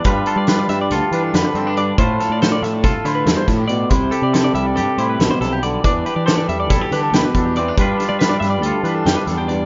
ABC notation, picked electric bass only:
X:1
M:9/8
L:1/16
Q:3/8=93
K:Gmix
V:1 name="Picked electric bass" clef=bass
G,,2 z G,3 G,,2 D,, z E,2 F,, z G,,4 | A,,2 z A,,3 A,,2 C,, z D,2 E,, z A,,4 | C,,2 z C,3 C,,2 G,, z A,,2 A,,, z B,,,4 | E,,2 z E,3 E,,2 B,,, z D,2 D,, z E,,4 |
G,,2 z G,3 G,,2 D,, z E,2 F,, z E,,4 |]